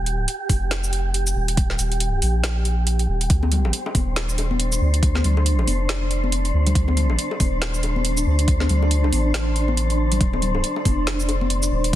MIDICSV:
0, 0, Header, 1, 5, 480
1, 0, Start_track
1, 0, Tempo, 431655
1, 1749, Time_signature, 4, 2, 24, 8
1, 13294, End_track
2, 0, Start_track
2, 0, Title_t, "Synth texture"
2, 0, Program_c, 0, 99
2, 0, Note_on_c, 0, 67, 86
2, 3669, Note_on_c, 0, 72, 89
2, 3681, Note_off_c, 0, 67, 0
2, 13294, Note_off_c, 0, 72, 0
2, 13294, End_track
3, 0, Start_track
3, 0, Title_t, "Ambient pad"
3, 0, Program_c, 1, 92
3, 3669, Note_on_c, 1, 62, 78
3, 3669, Note_on_c, 1, 74, 75
3, 13294, Note_off_c, 1, 62, 0
3, 13294, Note_off_c, 1, 74, 0
3, 13294, End_track
4, 0, Start_track
4, 0, Title_t, "Sub bass"
4, 0, Program_c, 2, 38
4, 0, Note_on_c, 2, 27, 91
4, 294, Note_off_c, 2, 27, 0
4, 550, Note_on_c, 2, 29, 100
4, 1494, Note_off_c, 2, 29, 0
4, 1509, Note_on_c, 2, 27, 102
4, 1973, Note_off_c, 2, 27, 0
4, 1989, Note_on_c, 2, 27, 104
4, 2453, Note_off_c, 2, 27, 0
4, 2470, Note_on_c, 2, 34, 96
4, 3414, Note_off_c, 2, 34, 0
4, 3429, Note_on_c, 2, 27, 104
4, 3653, Note_off_c, 2, 27, 0
4, 3671, Note_on_c, 2, 38, 96
4, 4134, Note_off_c, 2, 38, 0
4, 4390, Note_on_c, 2, 27, 97
4, 5334, Note_off_c, 2, 27, 0
4, 5350, Note_on_c, 2, 38, 102
4, 5814, Note_off_c, 2, 38, 0
4, 5830, Note_on_c, 2, 38, 104
4, 6294, Note_off_c, 2, 38, 0
4, 6309, Note_on_c, 2, 29, 98
4, 7253, Note_off_c, 2, 29, 0
4, 7270, Note_on_c, 2, 38, 100
4, 7494, Note_off_c, 2, 38, 0
4, 7510, Note_on_c, 2, 38, 96
4, 7973, Note_off_c, 2, 38, 0
4, 8230, Note_on_c, 2, 27, 100
4, 9174, Note_off_c, 2, 27, 0
4, 9189, Note_on_c, 2, 38, 100
4, 9653, Note_off_c, 2, 38, 0
4, 9667, Note_on_c, 2, 38, 102
4, 10132, Note_off_c, 2, 38, 0
4, 10150, Note_on_c, 2, 33, 95
4, 11334, Note_off_c, 2, 33, 0
4, 11350, Note_on_c, 2, 27, 91
4, 11814, Note_off_c, 2, 27, 0
4, 12070, Note_on_c, 2, 29, 95
4, 13014, Note_off_c, 2, 29, 0
4, 13028, Note_on_c, 2, 27, 102
4, 13294, Note_off_c, 2, 27, 0
4, 13294, End_track
5, 0, Start_track
5, 0, Title_t, "Drums"
5, 71, Note_on_c, 9, 42, 50
5, 182, Note_off_c, 9, 42, 0
5, 310, Note_on_c, 9, 42, 78
5, 422, Note_off_c, 9, 42, 0
5, 550, Note_on_c, 9, 36, 59
5, 550, Note_on_c, 9, 46, 95
5, 661, Note_off_c, 9, 36, 0
5, 661, Note_off_c, 9, 46, 0
5, 790, Note_on_c, 9, 38, 110
5, 790, Note_on_c, 9, 42, 75
5, 901, Note_off_c, 9, 38, 0
5, 901, Note_off_c, 9, 42, 0
5, 932, Note_on_c, 9, 82, 57
5, 1032, Note_on_c, 9, 42, 54
5, 1043, Note_off_c, 9, 82, 0
5, 1143, Note_off_c, 9, 42, 0
5, 1271, Note_on_c, 9, 42, 80
5, 1382, Note_off_c, 9, 42, 0
5, 1410, Note_on_c, 9, 42, 36
5, 1410, Note_on_c, 9, 82, 87
5, 1521, Note_off_c, 9, 42, 0
5, 1521, Note_off_c, 9, 82, 0
5, 1650, Note_on_c, 9, 42, 62
5, 1750, Note_off_c, 9, 42, 0
5, 1750, Note_on_c, 9, 36, 113
5, 1750, Note_on_c, 9, 42, 80
5, 1861, Note_off_c, 9, 36, 0
5, 1861, Note_off_c, 9, 42, 0
5, 1890, Note_on_c, 9, 38, 36
5, 1989, Note_on_c, 9, 42, 54
5, 1989, Note_on_c, 9, 82, 64
5, 2002, Note_off_c, 9, 38, 0
5, 2101, Note_off_c, 9, 42, 0
5, 2101, Note_off_c, 9, 82, 0
5, 2130, Note_on_c, 9, 42, 38
5, 2229, Note_off_c, 9, 42, 0
5, 2229, Note_on_c, 9, 42, 82
5, 2340, Note_off_c, 9, 42, 0
5, 2469, Note_on_c, 9, 46, 95
5, 2580, Note_off_c, 9, 46, 0
5, 2708, Note_on_c, 9, 38, 118
5, 2708, Note_on_c, 9, 42, 84
5, 2820, Note_off_c, 9, 38, 0
5, 2820, Note_off_c, 9, 42, 0
5, 2948, Note_on_c, 9, 42, 54
5, 3060, Note_off_c, 9, 42, 0
5, 3189, Note_on_c, 9, 42, 81
5, 3300, Note_off_c, 9, 42, 0
5, 3329, Note_on_c, 9, 42, 39
5, 3440, Note_off_c, 9, 42, 0
5, 3569, Note_on_c, 9, 42, 60
5, 3669, Note_off_c, 9, 42, 0
5, 3669, Note_on_c, 9, 42, 82
5, 3670, Note_on_c, 9, 36, 119
5, 3780, Note_off_c, 9, 42, 0
5, 3782, Note_off_c, 9, 36, 0
5, 3810, Note_on_c, 9, 63, 88
5, 3813, Note_on_c, 9, 60, 58
5, 3909, Note_on_c, 9, 42, 54
5, 3919, Note_on_c, 9, 64, 87
5, 3921, Note_off_c, 9, 63, 0
5, 3924, Note_off_c, 9, 60, 0
5, 4021, Note_off_c, 9, 42, 0
5, 4030, Note_off_c, 9, 64, 0
5, 4058, Note_on_c, 9, 60, 72
5, 4149, Note_on_c, 9, 42, 83
5, 4169, Note_off_c, 9, 60, 0
5, 4260, Note_off_c, 9, 42, 0
5, 4294, Note_on_c, 9, 60, 75
5, 4389, Note_on_c, 9, 63, 67
5, 4391, Note_on_c, 9, 36, 65
5, 4391, Note_on_c, 9, 46, 92
5, 4405, Note_off_c, 9, 60, 0
5, 4501, Note_off_c, 9, 63, 0
5, 4502, Note_off_c, 9, 36, 0
5, 4502, Note_off_c, 9, 46, 0
5, 4630, Note_on_c, 9, 38, 122
5, 4630, Note_on_c, 9, 42, 84
5, 4741, Note_off_c, 9, 38, 0
5, 4741, Note_off_c, 9, 42, 0
5, 4771, Note_on_c, 9, 82, 53
5, 4871, Note_on_c, 9, 42, 58
5, 4876, Note_on_c, 9, 60, 62
5, 4883, Note_off_c, 9, 82, 0
5, 4982, Note_off_c, 9, 42, 0
5, 4988, Note_off_c, 9, 60, 0
5, 5013, Note_on_c, 9, 63, 98
5, 5110, Note_on_c, 9, 42, 88
5, 5124, Note_off_c, 9, 63, 0
5, 5222, Note_off_c, 9, 42, 0
5, 5251, Note_on_c, 9, 42, 40
5, 5251, Note_on_c, 9, 82, 80
5, 5362, Note_off_c, 9, 42, 0
5, 5362, Note_off_c, 9, 82, 0
5, 5491, Note_on_c, 9, 42, 64
5, 5590, Note_on_c, 9, 36, 118
5, 5591, Note_off_c, 9, 42, 0
5, 5591, Note_on_c, 9, 42, 81
5, 5701, Note_off_c, 9, 36, 0
5, 5702, Note_off_c, 9, 42, 0
5, 5726, Note_on_c, 9, 60, 53
5, 5726, Note_on_c, 9, 63, 86
5, 5732, Note_on_c, 9, 38, 39
5, 5830, Note_on_c, 9, 64, 83
5, 5831, Note_on_c, 9, 42, 56
5, 5837, Note_off_c, 9, 60, 0
5, 5838, Note_off_c, 9, 63, 0
5, 5843, Note_off_c, 9, 38, 0
5, 5941, Note_off_c, 9, 64, 0
5, 5942, Note_off_c, 9, 42, 0
5, 5973, Note_on_c, 9, 60, 64
5, 6071, Note_on_c, 9, 42, 86
5, 6084, Note_off_c, 9, 60, 0
5, 6182, Note_off_c, 9, 42, 0
5, 6214, Note_on_c, 9, 60, 61
5, 6306, Note_on_c, 9, 63, 67
5, 6311, Note_on_c, 9, 46, 91
5, 6325, Note_off_c, 9, 60, 0
5, 6417, Note_off_c, 9, 63, 0
5, 6422, Note_off_c, 9, 46, 0
5, 6550, Note_on_c, 9, 38, 118
5, 6550, Note_on_c, 9, 42, 85
5, 6662, Note_off_c, 9, 38, 0
5, 6662, Note_off_c, 9, 42, 0
5, 6791, Note_on_c, 9, 42, 59
5, 6902, Note_off_c, 9, 42, 0
5, 6936, Note_on_c, 9, 63, 83
5, 7031, Note_on_c, 9, 42, 85
5, 7047, Note_off_c, 9, 63, 0
5, 7143, Note_off_c, 9, 42, 0
5, 7172, Note_on_c, 9, 42, 39
5, 7283, Note_off_c, 9, 42, 0
5, 7412, Note_on_c, 9, 42, 61
5, 7414, Note_on_c, 9, 64, 90
5, 7510, Note_on_c, 9, 36, 122
5, 7511, Note_off_c, 9, 42, 0
5, 7511, Note_on_c, 9, 42, 80
5, 7525, Note_off_c, 9, 64, 0
5, 7621, Note_off_c, 9, 36, 0
5, 7622, Note_off_c, 9, 42, 0
5, 7649, Note_on_c, 9, 60, 49
5, 7655, Note_on_c, 9, 63, 105
5, 7750, Note_on_c, 9, 42, 55
5, 7751, Note_on_c, 9, 64, 73
5, 7760, Note_off_c, 9, 60, 0
5, 7766, Note_off_c, 9, 63, 0
5, 7862, Note_off_c, 9, 42, 0
5, 7862, Note_off_c, 9, 64, 0
5, 7891, Note_on_c, 9, 60, 64
5, 7991, Note_on_c, 9, 42, 80
5, 8003, Note_off_c, 9, 60, 0
5, 8102, Note_off_c, 9, 42, 0
5, 8131, Note_on_c, 9, 60, 64
5, 8229, Note_on_c, 9, 36, 66
5, 8229, Note_on_c, 9, 46, 93
5, 8231, Note_on_c, 9, 63, 61
5, 8243, Note_off_c, 9, 60, 0
5, 8340, Note_off_c, 9, 46, 0
5, 8341, Note_off_c, 9, 36, 0
5, 8343, Note_off_c, 9, 63, 0
5, 8469, Note_on_c, 9, 38, 127
5, 8469, Note_on_c, 9, 42, 82
5, 8580, Note_off_c, 9, 38, 0
5, 8580, Note_off_c, 9, 42, 0
5, 8609, Note_on_c, 9, 82, 50
5, 8707, Note_on_c, 9, 42, 57
5, 8717, Note_on_c, 9, 60, 60
5, 8720, Note_off_c, 9, 82, 0
5, 8818, Note_off_c, 9, 42, 0
5, 8828, Note_off_c, 9, 60, 0
5, 8853, Note_on_c, 9, 63, 91
5, 8948, Note_on_c, 9, 42, 85
5, 8964, Note_off_c, 9, 63, 0
5, 9059, Note_off_c, 9, 42, 0
5, 9088, Note_on_c, 9, 42, 40
5, 9088, Note_on_c, 9, 82, 78
5, 9199, Note_off_c, 9, 42, 0
5, 9199, Note_off_c, 9, 82, 0
5, 9328, Note_on_c, 9, 42, 65
5, 9428, Note_off_c, 9, 42, 0
5, 9428, Note_on_c, 9, 42, 80
5, 9429, Note_on_c, 9, 36, 119
5, 9539, Note_off_c, 9, 42, 0
5, 9540, Note_off_c, 9, 36, 0
5, 9567, Note_on_c, 9, 63, 99
5, 9568, Note_on_c, 9, 38, 38
5, 9574, Note_on_c, 9, 60, 47
5, 9668, Note_on_c, 9, 42, 53
5, 9676, Note_on_c, 9, 64, 80
5, 9679, Note_off_c, 9, 38, 0
5, 9679, Note_off_c, 9, 63, 0
5, 9685, Note_off_c, 9, 60, 0
5, 9779, Note_off_c, 9, 42, 0
5, 9787, Note_off_c, 9, 64, 0
5, 9814, Note_on_c, 9, 60, 62
5, 9908, Note_on_c, 9, 42, 79
5, 9925, Note_off_c, 9, 60, 0
5, 10019, Note_off_c, 9, 42, 0
5, 10054, Note_on_c, 9, 60, 64
5, 10147, Note_on_c, 9, 46, 88
5, 10147, Note_on_c, 9, 63, 71
5, 10165, Note_off_c, 9, 60, 0
5, 10259, Note_off_c, 9, 46, 0
5, 10259, Note_off_c, 9, 63, 0
5, 10388, Note_on_c, 9, 38, 122
5, 10388, Note_on_c, 9, 42, 80
5, 10499, Note_off_c, 9, 38, 0
5, 10499, Note_off_c, 9, 42, 0
5, 10628, Note_on_c, 9, 42, 55
5, 10739, Note_off_c, 9, 42, 0
5, 10767, Note_on_c, 9, 63, 98
5, 10868, Note_on_c, 9, 42, 78
5, 10878, Note_off_c, 9, 63, 0
5, 10980, Note_off_c, 9, 42, 0
5, 11009, Note_on_c, 9, 42, 38
5, 11120, Note_off_c, 9, 42, 0
5, 11249, Note_on_c, 9, 42, 61
5, 11255, Note_on_c, 9, 64, 77
5, 11350, Note_off_c, 9, 42, 0
5, 11350, Note_on_c, 9, 36, 114
5, 11350, Note_on_c, 9, 42, 75
5, 11366, Note_off_c, 9, 64, 0
5, 11461, Note_off_c, 9, 36, 0
5, 11461, Note_off_c, 9, 42, 0
5, 11492, Note_on_c, 9, 60, 53
5, 11494, Note_on_c, 9, 63, 84
5, 11588, Note_on_c, 9, 64, 69
5, 11589, Note_on_c, 9, 42, 48
5, 11603, Note_off_c, 9, 60, 0
5, 11606, Note_off_c, 9, 63, 0
5, 11700, Note_off_c, 9, 42, 0
5, 11700, Note_off_c, 9, 64, 0
5, 11728, Note_on_c, 9, 60, 65
5, 11829, Note_on_c, 9, 42, 77
5, 11839, Note_off_c, 9, 60, 0
5, 11940, Note_off_c, 9, 42, 0
5, 11969, Note_on_c, 9, 60, 59
5, 12070, Note_on_c, 9, 36, 62
5, 12070, Note_on_c, 9, 46, 88
5, 12076, Note_on_c, 9, 63, 67
5, 12080, Note_off_c, 9, 60, 0
5, 12181, Note_off_c, 9, 36, 0
5, 12181, Note_off_c, 9, 46, 0
5, 12187, Note_off_c, 9, 63, 0
5, 12310, Note_on_c, 9, 38, 119
5, 12310, Note_on_c, 9, 42, 73
5, 12421, Note_off_c, 9, 38, 0
5, 12421, Note_off_c, 9, 42, 0
5, 12451, Note_on_c, 9, 82, 54
5, 12550, Note_on_c, 9, 60, 58
5, 12551, Note_on_c, 9, 42, 50
5, 12562, Note_off_c, 9, 82, 0
5, 12662, Note_off_c, 9, 42, 0
5, 12662, Note_off_c, 9, 60, 0
5, 12692, Note_on_c, 9, 63, 93
5, 12789, Note_on_c, 9, 42, 79
5, 12803, Note_off_c, 9, 63, 0
5, 12901, Note_off_c, 9, 42, 0
5, 12930, Note_on_c, 9, 42, 37
5, 12930, Note_on_c, 9, 82, 81
5, 13041, Note_off_c, 9, 42, 0
5, 13041, Note_off_c, 9, 82, 0
5, 13169, Note_on_c, 9, 42, 59
5, 13280, Note_off_c, 9, 42, 0
5, 13294, End_track
0, 0, End_of_file